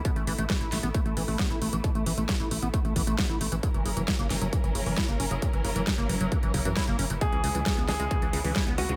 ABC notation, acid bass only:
X:1
M:4/4
L:1/16
Q:1/4=134
K:F#dor
V:1 name="Acid bass" clef=bass
B,, A, E, A, E, E A, B, A, A, E, A, B, E A, E, | B,, A, E, A, E, E A, B, A, A, E, A, B, E A, E, | ^A,, E, C, E, C, ^A, E, F, E, E, C, E, E A, C C, | ^A,, E, C, E, C, ^A, E, F, E, E, C, E, E A, C C, |
B,, E, C, E, C, B, E, G, B,, E, C, E, E B, C C, |]